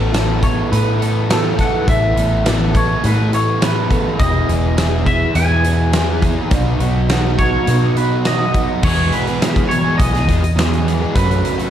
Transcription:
Already playing: A1 A2 E3 A3 B3 A4
0.12 E3 A3 B3 A4, snare, closed hi-hat
0.41 A3 B3 A4 C#5, kick, closed hi-hat
0.70 A2 E3 A3 B3 A4 B4, closed hi-hat
0.99 A3 B3 A4, closed hi-hat
1.28 E3 A3 B3 A4, snare, closed hi-hat
1.57 A3 B3 A4 F#5, kick, snare, closed hi-hat
1.86 A1 A2 E3 A3 B3 A4 E5, kick, closed hi-hat
2.16 A1 A3 B3 A4, closed hi-hat
2.44 E3 A3 B3 A4, snare, closed hi-hat
2.73 A3 B3 A4 C#5, kick, closed hi-hat
3.03 A2 E3 A3 B3 A4 B4, closed hi-hat
3.33 A3 B3 A4 C#5, closed hi-hat
3.60 E3 A3 B3 A4 B4, snare, closed hi-hat
3.90 A3 B3 A4, kick, closed hi-hat
4.19 E1 E2 B2 E3 B3 E4 G#4 D#5, kick, closed hi-hat
4.49 E1 E3 B3 E4 G#4, closed hi-hat
4.76 E3 B3 E4 G#4, snare, closed hi-hat
5.06 E3 B3 E4 G#4 E5, kick, closed hi-hat
5.34 E2 B2 E3 B3 E4 G#4 G#5, closed hi-hat
5.63 E3 B3 E4 G#4, closed hi-hat
5.93 E3 B3 E4 G#4, snare, closed hi-hat
6.22 E3 B3 E4 G#4, kick, closed hi-hat
6.50 B1 B2 F#3 B3 D#4 F#4, kick, closed hi-hat
6.79 B1 B3 D#4 F#4, closed hi-hat
7.09 F#3 B3 D#4 F#4, snare, closed hi-hat
7.37 B3 D#4 F#4 C#5, kick, closed hi-hat
7.66 B2 F#3 B3 D#4 F#4, closed hi-hat
7.96 B3 D#4 F#4 B4, closed hi-hat
8.25 F#3 B3 D#4 F#4 D#5, snare, closed hi-hat
8.53 B3 D#4 F#4, kick, closed hi-hat
8.82 E2 B2 E3 G#3 B3 G#4 C#5, kick, crash
9.12 B4, closed hi-hat
9.27 E3 G#3 B3 G#4, closed hi-hat
9.42 E2 B2 E3 G#3 B3 G#4, snare, closed hi-hat
9.56 kick, closed hi-hat
9.69 C#5, muted overdriven electric guitar stroke, closed hi-hat
9.84 E3 G#3 B3 G#4
9.98 B1 D#5, kick, closed hi-hat
10.13 E3 G#3 B3 G#4, snare, closed hi-hat
10.27 E2 E3 G#3 B3 G#4, kick, closed hi-hat
10.43 muted overdriven electric guitar stroke, closed hi-hat
10.56 E2 B2 E3 G#3 B3 G#4, snare, closed hi-hat
10.73 closed hi-hat
10.86 E3 G#3 B3 G#4, closed hi-hat
11.01 E3 G#3 B3 G#4
11.15 F#2 C#3 F#3 A3 C#4 F#4 B4, kick, closed hi-hat
11.31 closed hi-hat
11.45 closed hi-hat
11.58 F#3 A3 C#4 F#4, closed hi-hat

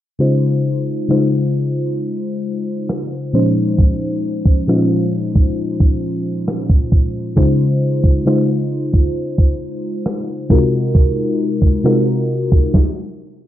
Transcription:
0.19 C#3 G#3 D#4 F4 C5
1.08 C#3 G#3 D#4 F4 C5, cross-stick
2.89 cross-stick
3.33 A#2 F3 G#3 C#4 D#4 C5
3.78 kick
4.45 kick
4.67 A#2 F3 G#3 C#4 D#4 F4, cross-stick
5.35 kick
5.80 kick
6.48 cross-stick
6.70 kick
6.92 kick
7.36 C#3 G#3 D#4 F4 C5, kick
8.04 kick
8.25 C#3 G#3 D#4 F4 C5, cross-stick
8.94 kick
9.38 kick
10.06 cross-stick
10.49 C3 G#3 D#4 F4 F#4 A#4, kick
10.95 kick
11.62 kick
11.84 C3 G#3 D#4 F4 F#4 A#4, cross-stick
12.52 kick
12.74 kick, snare

